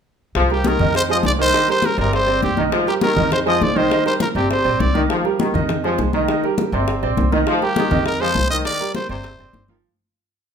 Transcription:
0.35 C2 F3, high bongo, high conga
0.50 G3 G4 A#4, high bongo, high conga
0.64 D#3 A#4, high bongo, high conga
0.79 F2 D#3 D#4 D#5, high bongo, high conga, low conga
0.94 C5, high bongo, high conga
1.09 F3 G#3 G#4 C5 D#5, high bongo, high conga
1.23 C2 D5, high bongo, low bongo, high conga
1.39 D#3 D#4 C5 D#5
1.53 D#3 D#4 D#5, high bongo, high conga
1.68 G3 G4 A#4 C5, high bongo, high conga
1.82 A#4, high bongo, high conga
1.97 G1 C3 C4 A#4 C5 D5, high bongo, high conga
2.13 C5, high bongo, high conga
2.27 C4 C5 D5, high bongo, high conga
2.42 C2 G4, high bongo, low bongo, high conga
2.57 D#3 D#4 D#5, high conga
2.72 F3, high bongo, high conga
2.87 G3 G4 A#4, high bongo, high conga
3.01 D#3 A#4, high bongo, high conga
3.16 F2 D#3 D#4 D#5, high bongo, high conga, low conga
3.32 C5, high bongo, high conga, low conga
3.46 F3 G#3 G#4 C5 D#5, high bongo, high conga
3.61 C2 D5, high bongo, low bongo, high conga
3.75 D#3 D#4 C5 D#5, high conga
3.90 D#3 D#4 D#5, high bongo, high conga
4.05 G3 G4 A#4 C5, high bongo, high conga
4.20 A#4, high bongo, high conga
4.35 G1 C3 C4 G4 C5 D5, high bongo, high conga
4.50 C5, high bongo, high conga
4.65 A#1 C4 C5 D5, high bongo, high conga
4.80 C2 D5, high bongo, low bongo, high conga
4.94 D#3 D#4 D#5, high conga
5.10 F3, high bongo, high conga
5.24 G3 G4 A#4, high bongo, high conga
5.40 D#3, high bongo, high conga
5.54 F2 D#3 D#4 D#5, high bongo, high conga, low conga
5.69 high bongo, high conga, low conga
5.84 F3 G#3 G#4 C5, high bongo, high conga
5.98 C2, high bongo, low bongo, high conga
6.13 D#3 D#4 D#5, high conga
6.28 D#3 D#4 D#5, high bongo, high conga
6.44 G3 G4 A#4, high bongo, high conga
6.58 high bongo, high conga
6.72 G1 C3 C4 C5 D5, high bongo, high conga
6.88 high bongo, high conga
7.03 A#1 C4 C5 D5, high bongo, high conga
7.17 C2, high bongo, low bongo, high conga
7.32 D#3 D#4 D#5, high conga
7.47 F3, high bongo, high conga
7.62 G3 G4 A#4, high bongo, high conga
7.76 D#3, high bongo, high conga
7.91 F2 D#3 D#4 D#5, high bongo, high conga, low conga
8.06 A#4, high bongo, high conga
8.20 F3 G#3 G#4 C5, high bongo, high conga
8.35 C2, high bongo, low bongo, high conga
8.50 D#3 D#4 D#5
8.65 D#3 D#4 D5 D#5, high bongo, high conga
8.80 G3 G4 A#4, high bongo, high conga
8.95 C5, high bongo, high conga
9.09 G1 C3 C4 C5 D5, high bongo, high conga
9.24 high bongo, high conga
9.39 F1 C4 C5 D5, high bongo, high conga
9.53 G1, high bongo, low bongo, high conga
9.68 D#3 F3 F4 F5, high conga

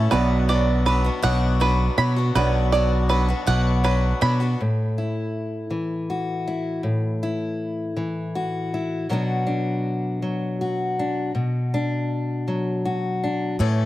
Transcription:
Already playing: A3 C#4 E4 A4 E5 A5
0.11 B1 B2 F#3 B3 D4 F#4 B4 D5
0.49 F#3 B3 D4 F#4 D5
0.86 F#3 B3 D4 F#4 B4
1.04 B3 D4 F#4
1.22 B1 B2 F#3 B3 D4 F#4 F#5
1.60 F#3 B3 D4 F#4 B4
1.98 B2 F#3 B3 D4 F#4 B5
2.16 B3 D4 F#4
2.35 B1 B2 F#3 B3 D4 F#4 B4 D5
2.72 F#3 B3 D4 F#4 D5
3.09 F#3 B3 D4 F#4 B4
3.28 B3 D4 F#4
3.46 B1 B2 F#3 B3 D4 F#4 F#5
3.84 F#3 B3 D4 F#4 B4
4.21 B2 F#3 B3 D4 F#4 B5
4.40 B3 D4 F#4
4.61 A2
4.98 E4
5.70 E3
6.10 F#4
6.48 E4
6.83 A2
7.23 E4
7.97 E3
8.35 F#4
8.74 E4
9.09 B2 F#3 B3 D4 F#4
9.47 D4
10.22 F#3
10.61 F#4
10.99 D4
11.35 B2
11.74 D4
12.48 F#3
12.85 F#4
13.24 D4
13.59 A2 E3 A3 C#4 A4

